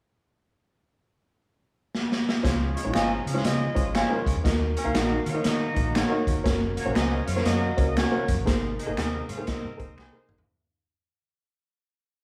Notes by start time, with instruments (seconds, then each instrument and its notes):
1.95 snare
2.12 snare
2.29 snare
2.43 fingered electric bass C#2, tonewheel organ F3 C#4 G#4, upright piano G#3 C#4 F4 C#5, kick, snare, closed hi-hat
2.75 horn section G#3 F4 C#5, closed hi-hat
2.84 fingered electric bass A#1, upright piano G#3 C#4 D#4 C#5
2.91 horn section D#4 C5 D#5, upright piano F4, finger snap
2.95 fingered electric bass G#1, clean electric guitar F4 G#4 C#5, snare, closed hi-hat
3.26 fingered electric bass C#3, horn section C#4 G#4 F5, closed hi-hat
3.34 upright piano G#3 C#4 F4 C#5, snare
3.44 fingered electric bass C#3, horn section G#3 F4 D#5, snare, closed hi-hat
3.74 fingered electric bass G#1, upright piano G#3 C#4 F4 C#5, kick, closed hi-hat
3.94 horn section G#3 F4 C#5, clean electric guitar F4 G#4 C#5, finger snap, snare, closed hi-hat
4.09 upright piano G#3 C#4 F4 A#4
4.26 fingered electric bass C#2, kick, closed hi-hat
4.36 fingered electric bass E2
4.43 fingered electric bass D#2, tonewheel organ D#3 A#3 F#4, upright piano A#3 D#4 F#4 D#5, kick, snare, closed hi-hat
4.76 horn section C#4 A#4 C#5, closed hi-hat
4.84 fingered electric bass C2, upright piano A#3 D#4 F#4 F5
4.94 fingered electric bass A#1, horn section A#3 F#4 D#5, clean electric guitar D#4 F#4 A#4, finger snap, snare, closed hi-hat
5.26 fingered electric bass D#3, horn section F4 C#5 F5, closed hi-hat
5.34 upright piano A#3 D#4 F#4 D#5
5.44 fingered electric bass D#3, horn section A#3 F#4 D#5, snare, closed hi-hat
5.74 fingered electric bass A#1, upright piano A#3 D#4 F#4 D#5, kick, closed hi-hat
5.95 horn section A#3 F#4 C#5, clean electric guitar D#4 F#4 A#4, finger snap, snare, closed hi-hat
6.09 upright piano A#3 D#4 F#4 D#5
6.27 fingered electric bass D#2, kick, closed hi-hat
6.37 fingered electric bass G1
6.44 fingered electric bass F#1, tonewheel organ C#3, upright piano A#3 C#4 F#4 C#5, kick, snare, closed hi-hat
6.77 horn section A#3 F#4 C#5, closed hi-hat
6.85 fingered electric bass A#1, upright piano A#3 C#4 F#4 C#5
6.95 fingered electric bass C#2, clean electric guitar C#4 F#4 A#4, horn section D#4 C5 D#5, finger snap, snare, closed hi-hat
7.26 fingered electric bass F#2, horn section F4 C#5 F5, closed hi-hat
7.36 upright piano A#3 C#4 F#4 C#5, snare
7.45 fingered electric bass F#2, horn section A#3 F#4 D#5, snare, closed hi-hat
7.77 fingered electric bass C#2, upright piano A#3 C#4 F#4 C#5, kick, closed hi-hat
7.97 horn section A#3 F#4 C#5, clean electric guitar C#4 F#4 A#4, finger snap, snare, closed hi-hat
8.12 upright piano A#3 C#4 F#4 C#5
8.28 fingered electric bass F#2, kick, closed hi-hat
8.37 fingered electric bass A1
8.45 fingered electric bass G#1, tonewheel organ C3 G#4, upright piano A#3 D#4 G#4 C5, kick, snare, closed hi-hat
8.79 horn section G#3 D#4 C5, closed hi-hat
8.86 fingered electric bass G#1, upright piano A#3 D#4 G#4 D#5
8.97 fingered electric bass D#2, clean electric guitar C4 G#4 A#4, horn section C4 A#4 D#5, finger snap, snare, closed hi-hat
9.29 fingered electric bass G#2, horn section F4 C#5 F5, closed hi-hat
9.37 upright piano A#3 D#4 G#4 C5
9.47 horn section C4 A#4 D#5, kick, snare, closed hi-hat
9.64 fingered electric bass G#2
9.77 fingered electric bass G#1, upright piano A#3 D#4 G#4 C5, kick, closed hi-hat
9.88 fingered electric bass C#2
9.97 horn section G#3 D#4 C5, clean electric guitar C4 G#4 A#4, finger snap, snare
10.12 upright piano A#3 D#4 G#4 C5
10.29 fingered electric bass A1, mid tom
10.38 floor tom